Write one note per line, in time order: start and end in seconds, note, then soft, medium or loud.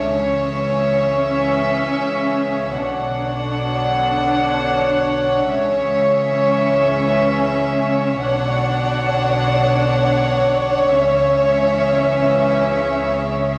0.00 2.74 C#2 soft
0.00 2.74 C#3 soft
0.00 2.74 C#4 soft
0.00 2.74 C#5 medium
0.00 2.75 C#5 medium
0.00 2.74 E5 medium
0.04 2.75 E3 medium
2.78 5.51 B1 medium
2.78 5.51 B2 medium
2.78 5.34 D3 medium
2.78 5.47 D4 soft
2.78 8.18 C#5 medium
2.78 5.46 F#5 medium
5.51 8.18 C#2 medium
5.51 8.18 C#3 medium
5.51 8.18 E3 medium
5.51 8.18 C#4 medium
5.51 8.18 E5 medium
8.21 10.88 B1 medium
8.21 10.88 B2 medium
8.21 10.88 D3 medium
8.21 10.88 D4 medium
8.21 13.58 C#5 medium
8.21 13.48 C#5 medium
8.21 10.88 F#5 medium
10.91 13.58 C#2 medium
10.91 13.58 C#3 medium
10.91 13.48 E3 medium
10.91 13.58 C#4 medium
10.91 13.58 E5 medium